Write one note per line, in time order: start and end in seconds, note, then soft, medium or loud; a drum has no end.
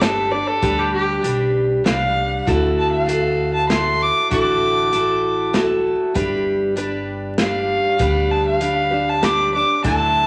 0.00 0.40 G1 loud
0.00 0.31 G3 medium
0.00 0.32 D4 medium
0.00 0.31 G4 medium
0.00 0.33 A4 medium
0.00 0.30 B4 medium
0.00 snare medium
0.00 closed hi-hat medium
0.31 0.61 D4 soft
0.31 0.62 G4 soft
0.31 0.62 B4 medium
0.31 0.49 D5 medium
0.47 0.80 A4 medium
0.62 1.16 D2 medium
0.62 1.21 G3 medium
0.62 1.23 D4 medium
0.62 1.23 G4 medium
0.62 1.25 B4 medium
0.62 kick loud
0.62 closed hi-hat medium
0.79 0.92 G4 medium
0.93 1.23 G4 medium
1.23 1.76 B1 medium
1.23 1.83 G3 medium
1.23 1.85 D4 medium
1.23 1.85 G4 medium
1.23 1.86 B4 medium
1.23 closed hi-hat medium
1.84 2.38 C2 medium
1.84 2.46 G3 medium
1.84 2.47 D4 medium
1.84 2.47 G4 medium
1.84 2.47 B4 medium
1.84 2.44 F5 loud
1.84 snare medium
1.84 closed hi-hat medium
2.47 4.09 D2 loud
2.47 3.73 D3 medium
2.47 3.05 A3 medium
2.47 3.08 E4 medium
2.47 3.07 F#4 medium
2.47 3.08 A4 medium
2.47 kick loud
2.47 closed hi-hat medium
2.79 2.91 A5 medium
2.91 3.52 F5 medium
3.06 3.67 A3 medium
3.06 3.69 F#4 medium
3.06 3.70 A4 medium
3.06 closed hi-hat medium
3.54 3.68 A5 medium
3.69 4.30 A3 medium
3.69 4.31 E4 medium
3.69 4.31 F#4 medium
3.69 4.32 A4 medium
3.69 4.04 C6 medium
3.69 snare medium
3.69 closed hi-hat medium
4.02 4.30 D6 medium
4.30 5.93 A1 medium
4.30 4.92 D3 medium
4.30 4.90 A3 medium
4.30 4.92 E4 medium
4.30 4.93 F#4 medium
4.30 4.93 A4 medium
4.30 5.50 D6 medium
4.30 kick loud
4.30 closed hi-hat medium
4.92 5.52 A3 medium
4.92 5.54 E4 medium
4.92 5.54 F#4 medium
4.92 5.55 A4 medium
4.92 closed hi-hat medium
5.53 6.14 A3 medium
5.53 6.14 E4 medium
5.53 6.15 F#4 medium
5.53 6.16 A4 medium
5.53 snare medium
5.53 closed hi-hat medium
6.14 7.77 G1 loud
6.14 6.75 G3 medium
6.14 6.76 D4 medium
6.14 6.76 G4 loud
6.14 6.77 B4 medium
6.14 kick loud
6.14 closed hi-hat medium
6.76 7.37 G3 medium
6.76 7.39 D4 medium
6.76 7.39 G4 medium
6.76 7.39 B4 medium
6.76 closed hi-hat medium
7.38 7.97 G3 medium
7.38 7.99 D4 medium
7.38 7.99 G4 medium
7.38 7.99 B4 medium
7.38 8.32 F5 medium
7.38 snare medium
7.38 closed hi-hat medium
7.98 9.61 D2 medium
7.98 8.59 G3 medium
7.98 8.61 D4 medium
7.98 8.61 G4 medium
7.98 8.61 B4 medium
7.98 kick loud
7.98 closed hi-hat medium
8.31 8.45 A5 medium
8.46 9.10 F5 medium
8.60 8.91 G3 medium
8.60 8.92 D4 medium
8.60 8.91 G4 medium
8.60 8.90 B4 medium
8.60 closed hi-hat medium
8.91 9.21 D4 soft
8.91 9.22 G4 medium
8.91 9.22 B4 medium
9.09 9.25 A5 medium
9.21 9.53 G3 medium
9.21 9.53 D4 medium
9.21 9.53 G4 medium
9.21 9.52 B4 medium
9.21 9.53 D6 medium
9.21 snare medium
9.21 closed hi-hat medium
9.53 9.83 D4 soft
9.53 9.84 G4 soft
9.53 9.84 B4 soft
9.53 9.84 D6 medium
9.83 10.27 D2 loud
9.83 10.27 D3 medium
9.83 10.27 F#3 medium
9.83 10.27 A3 medium
9.83 10.27 D4 medium
9.83 10.27 E4 medium
9.83 10.27 A4 medium
9.83 10.27 A5 loud
9.83 kick loud
9.83 closed hi-hat medium